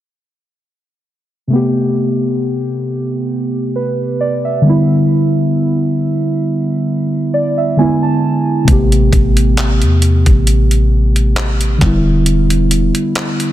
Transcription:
1.47 4.59 C3 medium
1.47 4.60 A3 medium
1.53 4.61 B3 medium
1.53 4.63 G4 medium
3.76 4.18 B4 medium
4.21 4.43 D5 medium
4.45 4.87 E5 medium
4.61 7.73 D3 medium
4.61 7.74 G3 medium
4.67 7.75 B3 medium
4.67 7.76 E4 medium
7.34 7.56 D5 medium
7.58 7.77 E5 medium
7.77 8.67 D3 medium
7.77 8.67 G#3 medium
7.77 8.68 B3 medium
7.77 8.69 E4 medium
7.77 8.01 G#5 medium
8.03 8.64 A5 medium
8.64 9.11 A1 loud
8.64 11.75 C3 medium
8.64 11.77 A3 medium
8.64 kick loud
8.64 closed hi-hat medium
8.69 11.78 B3 medium
8.69 11.79 G4 medium
8.92 closed hi-hat soft
9.13 9.84 A1 loud
9.13 kick medium
9.13 closed hi-hat medium
9.37 closed hi-hat medium
9.57 clap loud
9.57 closed hi-hat medium
9.82 10.24 E2 medium
9.82 closed hi-hat soft
10.02 closed hi-hat medium
10.26 11.77 A1 medium
10.26 kick medium
10.26 closed hi-hat soft
10.47 closed hi-hat medium
10.71 closed hi-hat medium
11.16 closed hi-hat soft
11.36 clap loud
11.36 closed hi-hat medium
11.61 closed hi-hat soft
11.78 12.91 E1 loud
11.78 13.53 D3 medium
11.78 13.53 G3 medium
11.78 kick loud
11.78 closed hi-hat medium
11.82 13.53 B3 medium
11.82 13.53 E4 medium
11.82 clap medium
12.26 closed hi-hat medium
12.50 closed hi-hat soft
12.71 closed hi-hat medium
12.95 closed hi-hat soft
13.15 clap loud
13.15 closed hi-hat medium
13.40 closed hi-hat soft

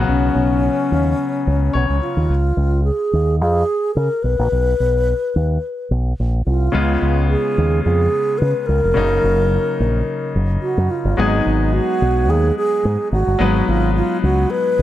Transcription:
0.00 1.97 C#3 medium
0.00 1.97 F#3 medium
0.00 1.98 B3 medium
0.00 1.98 F#4 medium
0.07 0.29 B1 medium
0.07 1.98 C#4 loud
0.35 0.68 B1 medium
0.92 1.13 D#2 medium
1.47 1.68 C#2 medium
1.73 1.86 B1 loud
1.73 2.25 C#5 medium
1.89 1.99 C#2 medium
2.01 2.81 F4 medium
2.17 2.27 D#2 medium
2.30 2.51 C#2 medium
2.57 2.90 C#2 medium
2.84 3.36 G#4 medium
3.13 3.41 D#2 medium
3.39 3.62 F2 medium
3.39 3.91 G#4 loud
3.95 4.08 C#3 loud
3.95 4.24 A#4 loud
4.23 4.35 B1 medium
4.23 5.90 B4 loud
4.39 4.49 A#1 loud
4.52 4.73 B1 medium
4.80 5.12 B1 medium
5.36 5.57 D#2 medium
5.91 6.12 B1 medium
6.20 6.40 A#1 medium
6.46 6.68 C2 medium
6.46 7.25 F4 medium
6.72 6.96 C#2 loud
6.72 8.91 C#3 medium
6.72 8.92 G#3 medium
6.72 8.92 B3 medium
6.72 8.92 F4 medium
7.02 7.35 C#2 loud
7.29 7.81 G#4 medium
7.58 7.79 D#2 medium
7.83 8.07 F2 loud
7.83 8.40 G#4 loud
8.38 8.52 C#3 loud
8.38 8.68 B4 loud
8.66 8.80 C#2 medium
8.66 10.34 A#4 loud
8.84 8.93 F1 medium
8.94 9.18 F#1 medium
8.94 11.13 C#3 medium
8.94 11.13 F#3 medium
8.94 11.14 A#3 medium
8.94 11.14 D#4 medium
9.24 9.57 F#1 loud
9.80 10.01 A#1 medium
10.35 10.56 F#1 medium
10.61 10.92 F#4 medium
10.78 10.87 F#2 medium
10.91 11.20 F4 medium
11.05 11.15 G1 medium
11.17 11.40 G#1 loud
11.17 13.35 F#3 medium
11.17 13.35 G#3 medium
11.17 13.36 B3 medium
11.17 11.75 D#4 medium
11.17 13.36 D#4 medium
11.17 13.36 G#4 medium
11.46 11.79 G#1 medium
11.73 12.31 F#4 loud
12.02 12.29 B1 medium
12.29 12.50 D#2 loud
12.29 12.57 G#4 loud
12.58 13.09 G#4 loud
12.85 12.96 G#2 loud
13.12 13.23 G#1 loud
13.12 13.70 F#4 loud
13.27 13.37 G1 loud
13.39 13.61 G#1 loud
13.39 14.82 F#3 medium
13.39 14.82 G#3 medium
13.39 14.82 B3 medium
13.39 14.82 D#4 medium
13.39 14.82 B4 medium
13.68 14.01 G#1 loud
13.68 13.95 F4 loud
13.95 14.21 F4 medium
14.23 14.45 C#2 loud
14.23 14.52 F#4 loud
14.50 14.82 B4 loud
14.79 14.82 B1 medium

